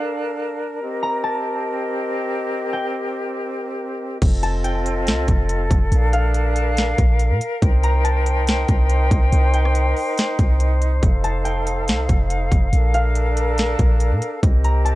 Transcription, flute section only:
0.00 0.80 D4 medium
0.00 0.59 A4 medium
0.00 4.18 A#4 medium
0.00 0.57 F5 medium
0.81 4.19 C4 medium
0.81 4.18 G4 medium
0.81 4.18 D#5 medium
4.22 5.90 C4 medium
4.22 5.90 F4 medium
4.22 7.35 A4 medium
4.22 5.90 D#5 medium
5.92 7.31 D4 medium
5.92 10.72 A#4 medium
5.92 7.61 F5 medium
7.62 12.69 D#4 medium
7.62 12.69 C5 medium
7.62 10.77 G5 medium
11.03 12.71 A4 medium
11.03 14.40 F5 medium
12.73 14.42 D4 medium
12.73 14.42 A4 medium
12.73 14.42 A#4 medium
14.43 14.95 C4 medium
14.43 14.95 G4 medium
14.43 14.95 A#4 medium
14.43 14.95 D#5 medium

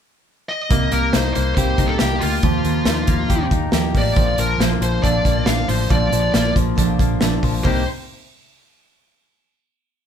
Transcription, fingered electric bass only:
0.71 0.89 C2 loud
0.92 1.10 C2 medium
1.14 1.32 C2 loud
1.36 1.54 C2 loud
1.57 1.75 C2 medium
1.78 1.96 C2 medium
2.01 2.19 C2 medium
2.22 2.40 D2 medium
2.43 2.61 D#2 loud
2.64 2.82 D#2 medium
2.86 3.04 D#2 medium
3.08 3.26 D#2 medium
3.29 3.48 D#2 medium
3.51 3.69 D#2 medium
3.72 3.91 D#2 medium
3.95 4.13 A1 medium
4.17 4.35 A#1 loud
4.38 4.56 A#1 medium
4.58 4.77 A#1 medium
4.80 4.99 A#1 medium
5.04 5.21 A#1 medium
5.25 5.43 A#1 medium
5.46 5.64 A#1 medium
5.68 5.86 A1 loud
5.90 6.08 A#1 loud
6.12 6.30 A#1 medium
6.33 6.51 A#1 loud
6.56 6.74 A#1 medium
6.78 6.95 A#1 medium
6.99 7.17 A#1 medium
7.21 7.39 A#1 medium
7.43 7.61 A#1 medium
7.65 7.85 C2 medium

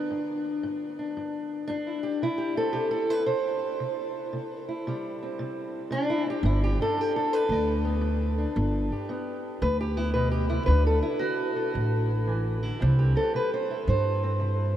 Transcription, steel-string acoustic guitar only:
0.00 2.21 D3 soft
0.00 0.98 D4 medium
0.10 0.60 G2 medium
0.63 1.12 G2 medium
0.99 1.66 D4 soft
1.17 1.65 G2 medium
1.68 2.18 G2 medium
1.68 2.21 D4 medium
1.87 2.03 E4 medium
2.03 2.21 G4 medium
2.22 2.71 C3 medium
2.22 2.57 E4 medium
2.38 2.71 G4 medium
2.57 4.31 C4 medium
2.57 2.90 A4 medium
2.73 3.23 C3 medium
2.73 3.08 G4 medium
2.91 3.10 A4 medium
3.10 4.31 E4 soft
3.10 3.26 B4 medium
3.26 3.76 C3 medium
3.26 4.67 C5 medium
3.80 4.29 C3 medium
4.33 4.82 C3 medium
4.69 6.09 E4 soft
4.87 5.36 C3 medium
4.87 7.84 G3 soft
5.23 5.92 C4 soft
5.39 5.88 C3 medium
5.91 6.40 C3 medium
5.91 6.26 D4 loud
6.10 6.27 E4 medium
6.26 6.42 C4 soft
6.26 6.45 G4 medium
6.45 6.94 G2 medium
6.45 6.62 E4 medium
6.64 6.80 G4 medium
6.81 8.38 D4 soft
6.81 7.01 A4 loud
6.97 7.47 G2 medium
6.97 7.16 G4 medium
7.16 7.33 A4 medium
7.33 8.03 B4 medium
7.51 8.00 G2 medium
7.51 8.57 D5 loud
7.85 8.54 B3 soft
8.01 8.52 G2 medium
8.38 10.00 D4 soft
8.57 9.06 G2 medium
8.92 9.62 G4 soft
9.09 9.59 G2 medium
9.09 9.96 B3 soft
9.62 10.12 G2 medium
9.62 9.80 B4 loud
9.81 9.97 G4 medium
9.97 10.66 B3 soft
9.97 10.13 E4 medium
10.14 10.49 B2 medium
10.14 10.31 B4 medium
10.32 10.49 G4 medium
10.49 10.68 C3 medium
10.49 10.66 E4 medium
10.66 11.18 D3 medium
10.66 12.79 D4 soft
10.66 11.18 F#4 soft
10.66 10.85 B4 loud
10.87 11.02 A4 medium
11.03 11.56 E4 medium
11.19 11.71 D3 medium
11.19 12.09 F#4 medium
11.56 12.63 A4 soft
11.74 12.24 D3 medium
12.27 12.62 E3 medium
12.62 12.80 D3 soft
12.62 13.16 E4 medium
12.80 13.30 C3 medium
12.80 14.77 G3 soft
12.80 13.14 C4 soft
12.99 13.69 G4 medium
13.16 14.22 C4 soft
13.16 13.34 A4 loud
13.34 13.83 C3 medium
13.34 13.53 B4 medium
13.54 13.88 C5 medium
13.70 14.75 E4 soft
13.87 14.36 C3 medium
13.87 14.77 C5 medium
14.23 14.77 C4 soft
14.40 14.77 C3 medium

